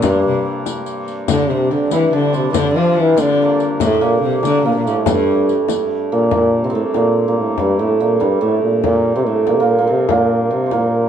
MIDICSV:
0, 0, Header, 1, 7, 480
1, 0, Start_track
1, 0, Tempo, 419287
1, 25, Time_signature, 6, 3, 24, 8
1, 12695, End_track
2, 0, Start_track
2, 0, Title_t, "Hammered dulcimer"
2, 0, Program_c, 0, 15
2, 0, Note_on_c, 0, 58, 70
2, 0, Note_on_c, 0, 60, 84
2, 0, Note_on_c, 0, 62, 100
2, 51, Note_on_c, 0, 55, 63
2, 1499, Note_off_c, 0, 62, 0
2, 1504, Note_on_c, 0, 62, 80
2, 1719, Note_off_c, 0, 60, 0
2, 1724, Note_on_c, 0, 60, 73
2, 1954, Note_off_c, 0, 62, 0
2, 1958, Note_on_c, 0, 62, 70
2, 2200, Note_on_c, 0, 64, 84
2, 2432, Note_off_c, 0, 62, 0
2, 2437, Note_on_c, 0, 62, 89
2, 2661, Note_off_c, 0, 60, 0
2, 2666, Note_on_c, 0, 60, 79
2, 2892, Note_off_c, 0, 62, 0
2, 2897, Note_on_c, 0, 62, 87
2, 3159, Note_on_c, 0, 65, 95
2, 3227, Note_off_c, 0, 55, 0
2, 3227, Note_off_c, 0, 64, 0
2, 3619, Note_off_c, 0, 62, 0
2, 3624, Note_on_c, 0, 62, 88
2, 3912, Note_off_c, 0, 58, 0
2, 3917, Note_on_c, 0, 58, 76
2, 4350, Note_on_c, 0, 57, 74
2, 4418, Note_off_c, 0, 58, 0
2, 4594, Note_on_c, 0, 58, 87
2, 4662, Note_off_c, 0, 57, 0
2, 5077, Note_off_c, 0, 62, 0
2, 5081, Note_on_c, 0, 62, 76
2, 5323, Note_off_c, 0, 58, 0
2, 5327, Note_on_c, 0, 58, 76
2, 5431, Note_off_c, 0, 58, 0
2, 5436, Note_on_c, 0, 58, 62
2, 5571, Note_on_c, 0, 57, 75
2, 5639, Note_off_c, 0, 58, 0
2, 5809, Note_on_c, 0, 55, 66
2, 7008, Note_on_c, 0, 58, 77
2, 7009, Note_off_c, 0, 65, 0
2, 7076, Note_off_c, 0, 57, 0
2, 7223, Note_off_c, 0, 58, 0
2, 7228, Note_on_c, 0, 58, 74
2, 7245, Note_off_c, 0, 60, 0
2, 7602, Note_on_c, 0, 60, 75
2, 7663, Note_off_c, 0, 60, 0
2, 7668, Note_on_c, 0, 60, 82
2, 7728, Note_on_c, 0, 57, 68
2, 7797, Note_off_c, 0, 55, 0
2, 7797, Note_off_c, 0, 58, 0
2, 7963, Note_on_c, 0, 58, 79
2, 8031, Note_off_c, 0, 57, 0
2, 8330, Note_off_c, 0, 58, 0
2, 8335, Note_on_c, 0, 58, 71
2, 8691, Note_on_c, 0, 55, 78
2, 8920, Note_on_c, 0, 57, 76
2, 8989, Note_off_c, 0, 55, 0
2, 8989, Note_off_c, 0, 58, 0
2, 9163, Note_on_c, 0, 58, 80
2, 9232, Note_off_c, 0, 57, 0
2, 9354, Note_off_c, 0, 62, 0
2, 9386, Note_on_c, 0, 55, 76
2, 9627, Note_on_c, 0, 57, 82
2, 9695, Note_off_c, 0, 55, 0
2, 9695, Note_off_c, 0, 58, 0
2, 10124, Note_on_c, 0, 58, 74
2, 10193, Note_off_c, 0, 57, 0
2, 10477, Note_off_c, 0, 60, 0
2, 10481, Note_on_c, 0, 60, 75
2, 10606, Note_on_c, 0, 57, 68
2, 10674, Note_off_c, 0, 58, 0
2, 10845, Note_on_c, 0, 58, 77
2, 10914, Note_off_c, 0, 57, 0
2, 10984, Note_off_c, 0, 58, 0
2, 10989, Note_on_c, 0, 58, 75
2, 11197, Note_off_c, 0, 58, 0
2, 11202, Note_on_c, 0, 58, 76
2, 11297, Note_off_c, 0, 60, 0
2, 11302, Note_on_c, 0, 60, 78
2, 11560, Note_off_c, 0, 58, 0
2, 11565, Note_on_c, 0, 58, 79
2, 12024, Note_off_c, 0, 60, 0
2, 12028, Note_on_c, 0, 60, 64
2, 12198, Note_off_c, 0, 60, 0
2, 12203, Note_on_c, 0, 60, 47
2, 12279, Note_off_c, 0, 58, 0
2, 12283, Note_on_c, 0, 58, 67
2, 12695, Note_off_c, 0, 58, 0
2, 12695, Note_off_c, 0, 60, 0
2, 12695, End_track
3, 0, Start_track
3, 0, Title_t, "Viola da gamba"
3, 0, Program_c, 1, 42
3, 20, Note_on_c, 1, 43, 94
3, 306, Note_off_c, 1, 43, 0
3, 313, Note_on_c, 1, 48, 67
3, 544, Note_off_c, 1, 48, 0
3, 1472, Note_on_c, 1, 50, 99
3, 1710, Note_on_c, 1, 48, 84
3, 1728, Note_off_c, 1, 50, 0
3, 1952, Note_on_c, 1, 50, 71
3, 1969, Note_off_c, 1, 48, 0
3, 2182, Note_off_c, 1, 50, 0
3, 2189, Note_on_c, 1, 52, 83
3, 2417, Note_off_c, 1, 52, 0
3, 2435, Note_on_c, 1, 50, 80
3, 2884, Note_off_c, 1, 50, 0
3, 2913, Note_on_c, 1, 50, 104
3, 3136, Note_off_c, 1, 50, 0
3, 3143, Note_on_c, 1, 53, 87
3, 3379, Note_on_c, 1, 52, 86
3, 3396, Note_off_c, 1, 53, 0
3, 3631, Note_off_c, 1, 52, 0
3, 3638, Note_on_c, 1, 50, 93
3, 4143, Note_off_c, 1, 50, 0
3, 4359, Note_on_c, 1, 45, 99
3, 4593, Note_on_c, 1, 46, 84
3, 4610, Note_off_c, 1, 45, 0
3, 4829, Note_off_c, 1, 46, 0
3, 4836, Note_on_c, 1, 48, 70
3, 5064, Note_off_c, 1, 48, 0
3, 5084, Note_on_c, 1, 50, 87
3, 5308, Note_off_c, 1, 50, 0
3, 5328, Note_on_c, 1, 46, 71
3, 5439, Note_off_c, 1, 46, 0
3, 5449, Note_on_c, 1, 46, 71
3, 5559, Note_off_c, 1, 46, 0
3, 5567, Note_on_c, 1, 45, 67
3, 5675, Note_off_c, 1, 45, 0
3, 5812, Note_on_c, 1, 43, 82
3, 6312, Note_off_c, 1, 43, 0
3, 12695, End_track
4, 0, Start_track
4, 0, Title_t, "Trombone"
4, 0, Program_c, 2, 57
4, 39, Note_on_c, 2, 43, 88
4, 538, Note_off_c, 2, 43, 0
4, 1498, Note_on_c, 2, 50, 96
4, 1724, Note_on_c, 2, 48, 91
4, 1741, Note_off_c, 2, 50, 0
4, 1960, Note_off_c, 2, 48, 0
4, 1973, Note_on_c, 2, 50, 85
4, 2189, Note_off_c, 2, 50, 0
4, 2208, Note_on_c, 2, 52, 88
4, 2427, Note_off_c, 2, 52, 0
4, 2464, Note_on_c, 2, 50, 85
4, 2676, Note_off_c, 2, 50, 0
4, 2706, Note_on_c, 2, 48, 88
4, 2873, Note_on_c, 2, 52, 71
4, 2890, Note_off_c, 2, 48, 0
4, 2954, Note_on_c, 2, 50, 106
4, 2971, Note_off_c, 2, 52, 0
4, 3186, Note_on_c, 2, 53, 97
4, 3203, Note_off_c, 2, 50, 0
4, 3440, Note_on_c, 2, 52, 103
4, 3458, Note_off_c, 2, 53, 0
4, 3676, Note_on_c, 2, 50, 96
4, 3694, Note_off_c, 2, 52, 0
4, 4201, Note_off_c, 2, 50, 0
4, 4396, Note_on_c, 2, 45, 102
4, 4609, Note_on_c, 2, 46, 92
4, 4627, Note_off_c, 2, 45, 0
4, 4797, Note_on_c, 2, 50, 61
4, 4815, Note_off_c, 2, 46, 0
4, 4850, Note_on_c, 2, 48, 77
4, 4868, Note_off_c, 2, 50, 0
4, 5088, Note_off_c, 2, 48, 0
4, 5114, Note_on_c, 2, 50, 95
4, 5329, Note_on_c, 2, 46, 83
4, 5346, Note_off_c, 2, 50, 0
4, 5410, Note_on_c, 2, 48, 64
4, 5427, Note_off_c, 2, 46, 0
4, 5467, Note_on_c, 2, 46, 83
4, 5484, Note_off_c, 2, 48, 0
4, 5581, Note_on_c, 2, 45, 80
4, 5599, Note_off_c, 2, 46, 0
4, 5831, Note_on_c, 2, 43, 91
4, 5848, Note_off_c, 2, 45, 0
4, 6359, Note_off_c, 2, 43, 0
4, 7016, Note_on_c, 2, 46, 91
4, 7234, Note_off_c, 2, 46, 0
4, 7267, Note_on_c, 2, 46, 99
4, 7584, Note_on_c, 2, 48, 79
4, 7601, Note_off_c, 2, 46, 0
4, 7617, Note_on_c, 2, 46, 61
4, 7634, Note_off_c, 2, 48, 0
4, 7652, Note_on_c, 2, 48, 79
4, 7669, Note_off_c, 2, 46, 0
4, 7702, Note_off_c, 2, 48, 0
4, 7709, Note_on_c, 2, 45, 77
4, 7821, Note_off_c, 2, 45, 0
4, 7965, Note_on_c, 2, 46, 91
4, 8299, Note_off_c, 2, 46, 0
4, 8344, Note_on_c, 2, 46, 88
4, 8447, Note_off_c, 2, 46, 0
4, 8463, Note_on_c, 2, 45, 76
4, 8677, Note_off_c, 2, 45, 0
4, 8702, Note_on_c, 2, 43, 94
4, 8923, Note_on_c, 2, 45, 89
4, 8940, Note_off_c, 2, 43, 0
4, 9172, Note_on_c, 2, 46, 81
4, 9190, Note_off_c, 2, 45, 0
4, 9393, Note_off_c, 2, 46, 0
4, 9400, Note_on_c, 2, 43, 91
4, 9624, Note_off_c, 2, 43, 0
4, 9638, Note_on_c, 2, 45, 87
4, 9862, Note_off_c, 2, 45, 0
4, 9877, Note_on_c, 2, 46, 80
4, 10101, Note_off_c, 2, 46, 0
4, 10124, Note_on_c, 2, 46, 95
4, 10455, Note_off_c, 2, 46, 0
4, 10490, Note_on_c, 2, 48, 84
4, 10611, Note_on_c, 2, 45, 77
4, 10628, Note_off_c, 2, 48, 0
4, 10843, Note_off_c, 2, 45, 0
4, 10863, Note_on_c, 2, 46, 86
4, 10929, Note_on_c, 2, 48, 73
4, 10946, Note_off_c, 2, 46, 0
4, 11018, Note_on_c, 2, 46, 83
4, 11036, Note_off_c, 2, 48, 0
4, 11212, Note_off_c, 2, 46, 0
4, 11234, Note_on_c, 2, 46, 75
4, 11279, Note_off_c, 2, 46, 0
4, 11337, Note_on_c, 2, 48, 85
4, 11549, Note_off_c, 2, 48, 0
4, 11557, Note_on_c, 2, 46, 98
4, 12038, Note_on_c, 2, 48, 86
4, 12055, Note_off_c, 2, 46, 0
4, 12291, Note_on_c, 2, 46, 86
4, 12308, Note_off_c, 2, 48, 0
4, 12695, Note_off_c, 2, 46, 0
4, 12695, End_track
5, 0, Start_track
5, 0, Title_t, "Hurdy-gurdy"
5, 0, Program_c, 3, 110
5, 0, Note_on_c, 3, 43, 76
5, 1485, Note_off_c, 3, 43, 0
5, 1485, Note_on_c, 3, 43, 65
5, 7247, Note_off_c, 3, 43, 0
5, 7247, Note_on_c, 3, 43, 65
5, 12695, Note_off_c, 3, 43, 0
5, 12695, End_track
6, 0, Start_track
6, 0, Title_t, "Frame drum"
6, 39, Note_on_c, 9, 64, 78
6, 154, Note_off_c, 9, 64, 0
6, 756, Note_on_c, 9, 64, 64
6, 871, Note_off_c, 9, 64, 0
6, 1466, Note_on_c, 9, 64, 81
6, 1581, Note_off_c, 9, 64, 0
6, 1956, Note_on_c, 9, 64, 24
6, 2071, Note_off_c, 9, 64, 0
6, 2197, Note_on_c, 9, 64, 68
6, 2311, Note_off_c, 9, 64, 0
6, 2910, Note_on_c, 9, 64, 79
6, 3025, Note_off_c, 9, 64, 0
6, 3391, Note_on_c, 9, 64, 28
6, 3505, Note_off_c, 9, 64, 0
6, 3629, Note_on_c, 9, 64, 62
6, 3743, Note_off_c, 9, 64, 0
6, 4351, Note_on_c, 9, 64, 72
6, 4465, Note_off_c, 9, 64, 0
6, 4830, Note_on_c, 9, 64, 25
6, 4945, Note_off_c, 9, 64, 0
6, 5071, Note_on_c, 9, 64, 64
6, 5186, Note_off_c, 9, 64, 0
6, 5794, Note_on_c, 9, 64, 94
6, 5908, Note_off_c, 9, 64, 0
6, 6509, Note_on_c, 9, 64, 72
6, 6623, Note_off_c, 9, 64, 0
6, 7227, Note_on_c, 9, 64, 76
6, 7342, Note_off_c, 9, 64, 0
6, 7949, Note_on_c, 9, 64, 64
6, 8064, Note_off_c, 9, 64, 0
6, 8673, Note_on_c, 9, 64, 69
6, 8788, Note_off_c, 9, 64, 0
6, 9398, Note_on_c, 9, 64, 60
6, 9512, Note_off_c, 9, 64, 0
6, 10116, Note_on_c, 9, 64, 72
6, 10231, Note_off_c, 9, 64, 0
6, 10839, Note_on_c, 9, 64, 67
6, 10953, Note_off_c, 9, 64, 0
6, 11547, Note_on_c, 9, 64, 75
6, 11661, Note_off_c, 9, 64, 0
6, 12265, Note_on_c, 9, 64, 69
6, 12380, Note_off_c, 9, 64, 0
6, 12695, End_track
7, 0, Start_track
7, 0, Title_t, "Riq"
7, 28, Note_on_c, 9, 54, 69
7, 142, Note_off_c, 9, 54, 0
7, 759, Note_on_c, 9, 54, 50
7, 874, Note_off_c, 9, 54, 0
7, 988, Note_on_c, 9, 54, 26
7, 1102, Note_off_c, 9, 54, 0
7, 1234, Note_on_c, 9, 54, 20
7, 1348, Note_off_c, 9, 54, 0
7, 1468, Note_on_c, 9, 54, 71
7, 1582, Note_off_c, 9, 54, 0
7, 2190, Note_on_c, 9, 54, 51
7, 2304, Note_off_c, 9, 54, 0
7, 2679, Note_on_c, 9, 54, 23
7, 2794, Note_off_c, 9, 54, 0
7, 2912, Note_on_c, 9, 54, 69
7, 3026, Note_off_c, 9, 54, 0
7, 3634, Note_on_c, 9, 54, 59
7, 3749, Note_off_c, 9, 54, 0
7, 4122, Note_on_c, 9, 54, 19
7, 4237, Note_off_c, 9, 54, 0
7, 4359, Note_on_c, 9, 54, 76
7, 4474, Note_off_c, 9, 54, 0
7, 5094, Note_on_c, 9, 54, 56
7, 5209, Note_off_c, 9, 54, 0
7, 5578, Note_on_c, 9, 54, 22
7, 5693, Note_off_c, 9, 54, 0
7, 5804, Note_on_c, 9, 54, 72
7, 5919, Note_off_c, 9, 54, 0
7, 6287, Note_on_c, 9, 54, 19
7, 6401, Note_off_c, 9, 54, 0
7, 6519, Note_on_c, 9, 54, 50
7, 6634, Note_off_c, 9, 54, 0
7, 12695, End_track
0, 0, End_of_file